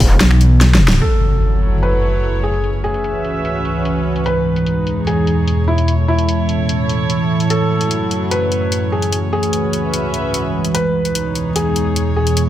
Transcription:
0.00 0.19 E1 loud
0.00 0.98 E3 medium
0.00 0.98 B3 medium
0.00 0.98 G#4 medium
0.00 kick medium
0.00 open hi-hat loud
0.20 1.00 B1 loud
0.20 snare loud
0.20 closed hi-hat medium
0.31 finger snap medium
0.41 closed hi-hat medium
0.61 snare medium
0.61 closed hi-hat medium
0.75 snare medium
0.88 snare loud
0.88 closed hi-hat medium
1.02 2.64 F#3 medium
1.02 1.75 A4 medium
1.02 impact medium
1.30 3.29 E4 medium
1.30 closed hi-hat soft
1.42 2.64 A4 medium
1.42 closed hi-hat medium
1.52 3.29 C#5 medium
1.63 closed hi-hat medium
1.83 2.35 B4 medium
1.83 closed hi-hat medium
2.03 closed hi-hat soft
2.23 closed hi-hat medium
2.44 2.68 G#4 medium
2.54 closed hi-hat soft
2.64 4.91 C#4 medium
2.64 closed hi-hat medium
2.71 4.91 B4 medium
2.76 4.91 F#4 medium
2.83 4.18 G#4 medium
2.83 4.26 E5 medium
2.94 closed hi-hat soft
3.04 closed hi-hat medium
3.25 closed hi-hat medium
3.45 closed hi-hat medium
3.65 closed hi-hat soft
3.85 closed hi-hat medium
4.16 closed hi-hat soft
4.26 5.88 E3 medium
4.26 4.99 B4 medium
4.26 closed hi-hat medium
4.31 5.88 D#4 medium
4.56 closed hi-hat soft
4.66 closed hi-hat medium
4.87 closed hi-hat soft
4.92 5.88 G#4 medium
4.99 9.77 C#5 medium
5.07 5.60 G#4 medium
5.07 closed hi-hat medium
5.27 closed hi-hat soft
5.48 closed hi-hat medium
5.68 5.92 E4 medium
5.78 closed hi-hat soft
5.88 9.76 E4 medium
5.88 closed hi-hat medium
5.99 9.12 A4 medium
6.08 7.42 E4 medium
6.19 closed hi-hat soft
6.29 closed hi-hat medium
6.49 closed hi-hat soft
6.69 closed hi-hat medium
6.89 closed hi-hat soft
7.10 closed hi-hat medium
7.40 closed hi-hat soft
7.50 9.12 F#3 medium
7.50 8.23 A4 medium
7.50 closed hi-hat medium
7.81 closed hi-hat soft
7.91 closed hi-hat medium
8.11 closed hi-hat soft
8.31 8.84 B4 medium
8.31 closed hi-hat medium
8.52 closed hi-hat soft
8.72 closed hi-hat medium
8.92 9.16 G#4 medium
9.02 closed hi-hat soft
9.12 11.39 C#4 medium
9.12 11.37 F#4 medium
9.12 closed hi-hat medium
9.33 10.66 G#4 medium
9.39 11.39 B4 medium
9.39 closed hi-hat soft
9.53 closed hi-hat medium
9.73 closed hi-hat soft
9.85 10.75 E5 medium
9.94 closed hi-hat medium
10.14 closed hi-hat soft
10.34 closed hi-hat medium
10.65 closed hi-hat soft
10.74 12.37 E3 medium
10.74 11.48 B4 medium
10.74 closed hi-hat medium
10.93 12.37 D#4 medium
11.05 closed hi-hat soft
11.15 12.49 C#5 medium
11.15 closed hi-hat medium
11.30 12.37 G#4 medium
11.35 closed hi-hat soft
11.56 12.08 G#4 medium
11.56 closed hi-hat medium
11.76 closed hi-hat soft
11.96 closed hi-hat medium
12.16 12.41 G#4 medium
12.27 closed hi-hat soft
12.37 12.49 E4 medium
12.37 closed hi-hat medium

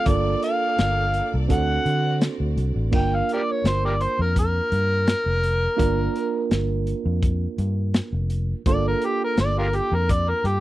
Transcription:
0.00 2.89 D5 medium
0.06 0.34 G1 medium
0.06 1.48 A#3 medium
0.06 1.47 A#3 medium
0.06 1.47 D4 medium
0.06 1.48 F4 medium
0.06 1.49 A4 medium
0.06 1.48 A4 medium
0.06 0.43 D5 medium
0.06 kick loud
0.06 closed hi-hat medium
0.43 1.35 F5 medium
0.43 closed hi-hat medium
0.78 1.20 G1 medium
0.78 snare medium
0.78 closed hi-hat medium
1.14 closed hi-hat medium
1.34 1.46 C2 medium
1.48 1.77 D2 medium
1.48 2.90 C4 medium
1.48 2.90 D4 medium
1.48 2.90 F#4 medium
1.48 2.92 F#4 medium
1.48 2.91 A4 medium
1.48 2.92 C5 medium
1.48 2.19 F#5 medium
1.48 kick medium
1.48 closed hi-hat medium
1.86 2.27 D3 medium
1.86 closed hi-hat medium
2.21 snare loud
2.21 closed hi-hat medium
2.40 2.56 D2 medium
2.57 2.74 C2 medium
2.57 closed hi-hat medium
2.76 2.91 A1 medium
2.91 3.20 G1 medium
2.91 5.75 A#3 medium
2.91 5.75 D4 medium
2.91 5.75 F4 medium
2.91 5.76 A#4 medium
2.91 kick loud
2.91 crash medium
2.96 3.17 G5 medium
3.15 3.30 F5 medium
3.29 closed hi-hat medium
3.33 3.42 G4 medium
3.33 3.41 A#4 medium
3.33 3.53 D5 medium
3.51 3.70 C#5 medium
3.64 4.06 G1 medium
3.64 snare medium
3.64 closed hi-hat medium
3.69 3.84 C5 medium
3.85 3.94 G4 medium
3.85 3.93 A#4 medium
3.85 4.04 D5 medium
4.01 4.19 C5 medium
4.01 closed hi-hat medium
4.19 4.59 F2 medium
4.19 4.36 A#4 medium
4.36 6.49 A#4 loud
4.36 kick medium
4.36 closed hi-hat medium
4.72 5.13 G2 medium
4.72 closed hi-hat medium
5.07 snare loud
5.07 closed hi-hat medium
5.26 5.66 F1 medium
5.43 closed hi-hat medium
5.77 6.07 G1 medium
5.77 8.61 A#3 medium
5.77 8.61 D4 medium
5.77 8.61 F4 medium
5.77 8.62 A#4 medium
5.77 kick loud
5.77 closed hi-hat medium
6.16 closed hi-hat medium
6.51 6.92 G1 medium
6.51 snare medium
6.51 closed hi-hat medium
6.87 closed hi-hat medium
7.06 7.46 F2 medium
7.22 kick medium
7.22 closed hi-hat medium
7.58 8.00 G2 loud
7.58 closed hi-hat medium
7.94 snare loud
7.94 closed hi-hat medium
8.13 8.53 F1 medium
8.30 closed hi-hat medium
8.66 8.93 G1 loud
8.66 10.60 A#3 medium
8.66 10.60 D4 medium
8.66 10.60 F4 medium
8.66 10.60 A4 medium
8.66 8.85 D5 medium
8.66 kick loud
8.66 closed hi-hat medium
8.88 9.07 A#4 medium
9.02 9.21 G4 medium
9.02 closed hi-hat medium
9.24 9.38 A#4 medium
9.37 9.79 G1 medium
9.37 9.57 D5 medium
9.37 snare medium
9.37 closed hi-hat medium
9.59 9.67 F4 medium
9.59 9.67 G4 medium
9.59 9.77 A#4 medium
9.73 9.97 G4 medium
9.73 closed hi-hat medium
9.92 10.32 F2 medium
9.92 10.13 A#4 medium
10.09 10.30 D5 medium
10.09 kick medium
10.09 closed hi-hat medium
10.29 10.48 A#4 medium
10.44 10.60 G2 medium
10.44 10.60 G4 medium
10.44 closed hi-hat medium

